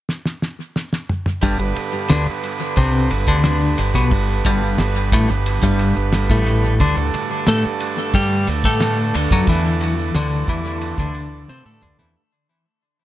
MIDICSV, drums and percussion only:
0, 0, Header, 1, 2, 480
1, 0, Start_track
1, 0, Key_signature, 1, "major"
1, 0, Tempo, 669643
1, 1026, Time_signature, 4, 2, 24, 8
1, 9350, End_track
2, 0, Start_track
2, 0, Title_t, "Drums"
2, 63, Note_on_c, 9, 38, 61
2, 135, Note_off_c, 9, 38, 0
2, 183, Note_on_c, 9, 38, 73
2, 255, Note_off_c, 9, 38, 0
2, 304, Note_on_c, 9, 38, 75
2, 375, Note_off_c, 9, 38, 0
2, 544, Note_on_c, 9, 38, 79
2, 616, Note_off_c, 9, 38, 0
2, 664, Note_on_c, 9, 38, 89
2, 736, Note_off_c, 9, 38, 0
2, 785, Note_on_c, 9, 45, 91
2, 856, Note_off_c, 9, 45, 0
2, 903, Note_on_c, 9, 45, 90
2, 974, Note_off_c, 9, 45, 0
2, 1022, Note_on_c, 9, 51, 82
2, 1023, Note_on_c, 9, 36, 99
2, 1094, Note_off_c, 9, 51, 0
2, 1095, Note_off_c, 9, 36, 0
2, 1264, Note_on_c, 9, 51, 63
2, 1336, Note_off_c, 9, 51, 0
2, 1505, Note_on_c, 9, 38, 104
2, 1505, Note_on_c, 9, 51, 91
2, 1577, Note_off_c, 9, 38, 0
2, 1577, Note_off_c, 9, 51, 0
2, 1745, Note_on_c, 9, 51, 70
2, 1817, Note_off_c, 9, 51, 0
2, 1985, Note_on_c, 9, 36, 102
2, 1985, Note_on_c, 9, 51, 89
2, 2057, Note_off_c, 9, 36, 0
2, 2057, Note_off_c, 9, 51, 0
2, 2226, Note_on_c, 9, 51, 69
2, 2298, Note_off_c, 9, 51, 0
2, 2347, Note_on_c, 9, 36, 91
2, 2418, Note_off_c, 9, 36, 0
2, 2465, Note_on_c, 9, 38, 104
2, 2465, Note_on_c, 9, 51, 88
2, 2536, Note_off_c, 9, 38, 0
2, 2536, Note_off_c, 9, 51, 0
2, 2708, Note_on_c, 9, 51, 65
2, 2779, Note_off_c, 9, 51, 0
2, 2828, Note_on_c, 9, 36, 87
2, 2900, Note_off_c, 9, 36, 0
2, 2948, Note_on_c, 9, 51, 88
2, 2949, Note_on_c, 9, 36, 94
2, 3019, Note_off_c, 9, 51, 0
2, 3021, Note_off_c, 9, 36, 0
2, 3189, Note_on_c, 9, 36, 102
2, 3189, Note_on_c, 9, 51, 66
2, 3261, Note_off_c, 9, 36, 0
2, 3261, Note_off_c, 9, 51, 0
2, 3430, Note_on_c, 9, 38, 109
2, 3430, Note_on_c, 9, 51, 86
2, 3501, Note_off_c, 9, 38, 0
2, 3501, Note_off_c, 9, 51, 0
2, 3671, Note_on_c, 9, 36, 97
2, 3672, Note_on_c, 9, 51, 65
2, 3743, Note_off_c, 9, 36, 0
2, 3744, Note_off_c, 9, 51, 0
2, 3913, Note_on_c, 9, 51, 83
2, 3985, Note_off_c, 9, 51, 0
2, 4033, Note_on_c, 9, 36, 102
2, 4104, Note_off_c, 9, 36, 0
2, 4151, Note_on_c, 9, 51, 65
2, 4222, Note_off_c, 9, 51, 0
2, 4391, Note_on_c, 9, 38, 101
2, 4391, Note_on_c, 9, 51, 83
2, 4462, Note_off_c, 9, 38, 0
2, 4462, Note_off_c, 9, 51, 0
2, 4513, Note_on_c, 9, 36, 97
2, 4585, Note_off_c, 9, 36, 0
2, 4634, Note_on_c, 9, 51, 64
2, 4706, Note_off_c, 9, 51, 0
2, 4874, Note_on_c, 9, 36, 92
2, 4874, Note_on_c, 9, 51, 88
2, 4945, Note_off_c, 9, 51, 0
2, 4946, Note_off_c, 9, 36, 0
2, 5116, Note_on_c, 9, 51, 65
2, 5187, Note_off_c, 9, 51, 0
2, 5352, Note_on_c, 9, 38, 116
2, 5352, Note_on_c, 9, 51, 90
2, 5424, Note_off_c, 9, 38, 0
2, 5424, Note_off_c, 9, 51, 0
2, 5593, Note_on_c, 9, 51, 68
2, 5665, Note_off_c, 9, 51, 0
2, 5832, Note_on_c, 9, 51, 89
2, 5833, Note_on_c, 9, 36, 94
2, 5904, Note_off_c, 9, 51, 0
2, 5905, Note_off_c, 9, 36, 0
2, 6072, Note_on_c, 9, 51, 66
2, 6144, Note_off_c, 9, 51, 0
2, 6194, Note_on_c, 9, 36, 94
2, 6266, Note_off_c, 9, 36, 0
2, 6312, Note_on_c, 9, 38, 106
2, 6312, Note_on_c, 9, 51, 91
2, 6384, Note_off_c, 9, 38, 0
2, 6384, Note_off_c, 9, 51, 0
2, 6554, Note_on_c, 9, 51, 77
2, 6626, Note_off_c, 9, 51, 0
2, 6673, Note_on_c, 9, 36, 94
2, 6745, Note_off_c, 9, 36, 0
2, 6788, Note_on_c, 9, 51, 92
2, 6792, Note_on_c, 9, 36, 97
2, 6860, Note_off_c, 9, 51, 0
2, 6864, Note_off_c, 9, 36, 0
2, 7029, Note_on_c, 9, 51, 75
2, 7101, Note_off_c, 9, 51, 0
2, 7272, Note_on_c, 9, 38, 104
2, 7272, Note_on_c, 9, 51, 95
2, 7344, Note_off_c, 9, 38, 0
2, 7344, Note_off_c, 9, 51, 0
2, 7512, Note_on_c, 9, 36, 107
2, 7513, Note_on_c, 9, 51, 67
2, 7584, Note_off_c, 9, 36, 0
2, 7585, Note_off_c, 9, 51, 0
2, 7628, Note_on_c, 9, 38, 34
2, 7700, Note_off_c, 9, 38, 0
2, 7750, Note_on_c, 9, 51, 80
2, 7822, Note_off_c, 9, 51, 0
2, 7870, Note_on_c, 9, 36, 100
2, 7942, Note_off_c, 9, 36, 0
2, 7988, Note_on_c, 9, 51, 62
2, 8060, Note_off_c, 9, 51, 0
2, 8231, Note_on_c, 9, 38, 57
2, 8303, Note_off_c, 9, 38, 0
2, 8471, Note_on_c, 9, 45, 79
2, 8543, Note_off_c, 9, 45, 0
2, 8593, Note_on_c, 9, 43, 78
2, 8665, Note_off_c, 9, 43, 0
2, 9350, End_track
0, 0, End_of_file